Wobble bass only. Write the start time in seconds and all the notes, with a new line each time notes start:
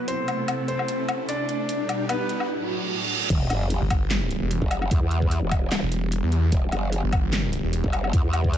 3.30 E1
3.50 F#1
4.62 F#1
4.91 E2
5.02 E2
5.42 E1
6.52 E1
6.72 F#1
7.84 F#1
8.13 E2
8.24 E2